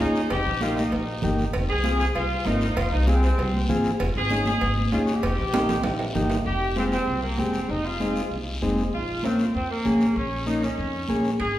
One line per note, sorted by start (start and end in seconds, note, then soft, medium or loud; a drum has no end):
0.00 0.25 D#2 medium
0.00 0.22 C#4 medium
0.00 0.22 D#4 medium
0.00 0.29 D#4 medium
0.00 0.22 G#4 medium
0.00 short guiro medium
0.15 short guiro medium
0.30 0.43 F1 medium
0.30 0.60 G4 loud
0.30 cowbell loud
0.30 long guiro medium
0.47 0.83 A#1 medium
0.61 0.83 A#3 medium
0.61 0.84 D#4 medium
0.61 0.77 F4 loud
0.61 0.84 G4 medium
0.61 high conga medium
0.61 short guiro medium
0.76 1.23 D#4 medium
0.76 high conga medium
0.76 short guiro medium
0.91 1.17 A#1 medium
0.91 cowbell medium
0.91 high conga soft
0.91 long guiro medium
1.22 1.48 G1 medium
1.22 1.45 A#3 medium
1.22 1.45 D#4 medium
1.22 1.45 G4 medium
1.22 high conga medium
1.22 low conga medium
1.22 short guiro medium
1.39 short guiro medium
1.53 1.66 F1 loud
1.53 cowbell loud
1.53 high conga soft
1.53 long guiro medium
1.69 2.07 C2 medium
1.69 1.98 G#4 loud
1.84 2.06 C4 medium
1.84 2.06 F4 medium
1.84 2.06 G#4 medium
1.84 high conga loud
1.84 short guiro medium
1.99 2.06 G#4 loud
1.99 short guiro medium
2.15 2.40 C2 medium
2.15 2.44 F4 loud
2.15 cowbell medium
2.15 high conga soft
2.15 long guiro medium
2.46 2.71 G#1 medium
2.46 2.68 C4 medium
2.46 2.77 D#4 loud
2.46 2.68 F4 medium
2.46 2.68 A#4 medium
2.46 high conga medium
2.46 low timbale medium
2.46 short guiro medium
2.61 short guiro medium
2.76 2.89 F1 medium
2.76 2.92 F4 loud
2.76 cowbell loud
2.76 high conga soft
2.76 long guiro medium
2.92 3.29 C2 loud
2.92 3.07 D#4 medium
3.07 3.22 C4 medium
3.07 3.29 C4 medium
3.07 3.29 F4 medium
3.07 3.30 G#4 medium
3.07 high conga loud
3.07 short guiro medium
3.23 3.66 C4 medium
3.23 short guiro medium
3.38 3.63 C2 loud
3.38 cowbell medium
3.38 high conga soft
3.38 long guiro medium
3.54 high conga medium
3.69 3.94 G#1 medium
3.69 3.91 C4 loud
3.69 3.91 F4 medium
3.69 3.91 G#4 loud
3.69 high conga medium
3.69 low conga medium
3.69 short guiro medium
3.84 short guiro medium
4.00 4.12 F1 loud
4.00 cowbell loud
4.00 high conga soft
4.00 long guiro medium
4.16 4.52 G#1 medium
4.16 4.45 G#4 loud
4.30 4.52 C#4 medium
4.30 4.52 D#4 medium
4.30 4.52 G#4 medium
4.30 high conga medium
4.30 short guiro medium
4.45 4.75 G#4 loud
4.45 high conga medium
4.45 short guiro medium
4.61 4.86 G#1 medium
4.61 cowbell medium
4.61 high conga soft
4.61 long guiro medium
4.77 high conga medium
4.92 5.17 D#2 medium
4.92 5.14 C#4 medium
4.92 5.14 D#4 medium
4.92 4.99 F4 medium
4.92 5.14 G#4 medium
4.92 high conga medium
4.92 short guiro medium
5.07 6.11 G4 medium
5.07 short guiro medium
5.23 5.35 F1 medium
5.23 cowbell loud
5.23 long guiro medium
5.38 5.75 A#1 medium
5.53 5.75 A#3 medium
5.53 5.75 D#4 medium
5.53 5.75 G4 medium
5.53 high conga loud
5.53 high timbale loud
5.53 short guiro medium
5.69 low conga medium
5.69 high timbale medium
5.69 short guiro medium
5.84 6.09 A#1 medium
5.84 cowbell medium
5.84 high conga soft
5.84 low timbale medium
5.84 long guiro medium
5.99 low timbale medium
6.15 6.40 G1 medium
6.15 6.36 A#3 loud
6.15 6.37 D#4 medium
6.15 6.37 G4 loud
6.15 high conga medium
6.15 low conga medium
6.15 short guiro medium
6.30 low timbale medium
6.30 short guiro medium
6.46 6.95 F1 medium
6.46 6.75 G4 loud
6.46 high conga soft
6.46 long guiro medium
6.76 6.98 G#3 medium
6.76 6.98 C4 medium
6.76 6.85 C4 medium
6.76 6.98 F4 medium
6.76 high conga medium
6.76 short guiro medium
6.92 7.21 C4 medium
6.92 short guiro medium
7.08 7.32 C2 medium
7.08 high conga soft
7.08 long guiro medium
7.22 7.37 A#3 medium
7.38 7.63 F1 medium
7.38 7.60 G#3 medium
7.38 7.69 C4 medium
7.38 7.60 C4 medium
7.38 7.60 G4 medium
7.38 high conga medium
7.38 short guiro medium
7.54 short guiro medium
7.69 8.18 F1 medium
7.69 7.85 D#4 medium
7.69 high conga soft
7.69 long guiro medium
7.85 8.31 F4 medium
8.00 8.22 G#3 medium
8.00 8.22 C4 medium
8.00 8.22 D#4 medium
8.00 high conga medium
8.00 short guiro medium
8.16 short guiro medium
8.31 8.56 C2 medium
8.31 high conga soft
8.31 long guiro medium
8.62 8.87 F1 medium
8.62 8.83 G#3 medium
8.62 8.84 C4 medium
8.62 8.84 D#4 loud
8.62 high conga medium
8.62 short guiro medium
8.77 short guiro medium
8.93 9.42 A#1 medium
8.93 9.22 F4 medium
8.93 high conga soft
8.93 long guiro medium
9.23 9.45 A#3 medium
9.23 9.54 C4 medium
9.23 9.45 C#4 medium
9.23 9.45 F4 medium
9.23 high conga medium
9.23 short guiro medium
9.39 short guiro medium
9.54 9.79 F2 medium
9.54 9.69 C4 medium
9.54 long guiro medium
9.70 10.13 A#3 medium
9.84 10.10 A#1 medium
9.84 10.06 A#3 medium
9.84 10.07 C#4 medium
9.84 10.07 G#4 medium
9.84 high conga medium
9.84 short guiro medium
10.01 short guiro medium
10.16 10.65 A#1 medium
10.16 10.45 C#4 medium
10.16 long guiro medium
10.46 10.68 A#3 medium
10.46 10.68 C#4 medium
10.46 10.61 D#4 medium
10.46 10.69 D#4 medium
10.46 high conga medium
10.46 short guiro medium
10.63 11.25 C#4 medium
10.63 short guiro medium
10.78 11.03 F2 medium
10.78 high conga soft
10.78 long guiro medium
11.09 11.34 A#1 medium
11.09 11.30 A#3 medium
11.09 11.30 C#4 medium
11.09 11.31 G#4 medium
11.09 high conga medium
11.09 short guiro medium
11.24 short guiro medium
11.40 11.59 G#1 medium
11.40 11.59 G#4 loud
11.40 high timbale medium
11.40 long guiro medium